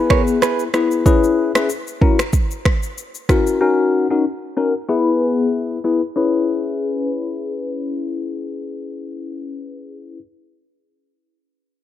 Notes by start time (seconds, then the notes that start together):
Already playing: B3 E4 G#4 B4
0.10 A#4 C#5, finger snap, kick, cross-stick
0.27 shaker
0.42 G#4 B4, finger snap, cross-stick, shaker
0.59 shaker
0.74 B3 E4 G#4 B4, finger snap, cross-stick, shaker
0.91 shaker
1.06 C#4 E4 G#4 B4, kick, shaker
1.24 shaker
1.55 C#4 E4 G#4 B4, finger snap, cross-stick, shaker
1.70 shaker
1.87 shaker
2.01 C#4 E4 F#4 A#4, kick
2.19 finger snap, cross-stick, shaker
2.33 kick, shaker
2.51 shaker
2.65 finger snap, kick, cross-stick
2.83 shaker
2.98 shaker
3.15 shaker
3.29 C#4 E4 F#4 A#4, finger snap, kick, cross-stick, shaker
3.47 shaker
3.61 C#4 D#4 F#4 A#4
4.10 C#4 D#4 F#4 A#4
4.57 C#4 D#4 F#4 A#4
4.89 B3 E4 G#4 B4
5.84 B3 E4 G#4 B4
6.16 C#4 E4 G#4 B4